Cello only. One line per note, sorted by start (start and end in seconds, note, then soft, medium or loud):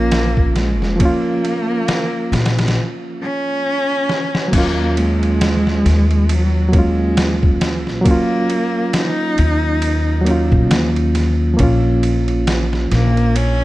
0.00 0.52 A#3 loud
0.56 1.02 G#3 medium
1.00 2.76 A#3 loud
3.22 4.49 C#4 loud
4.54 5.00 A#3 loud
4.98 6.33 G#3 loud
6.31 6.77 F#3 medium
6.76 7.63 G#3 medium
8.06 8.96 A#3 loud
8.94 10.70 D#4 loud
12.92 13.37 A#3 medium
13.36 13.64 C#4 loud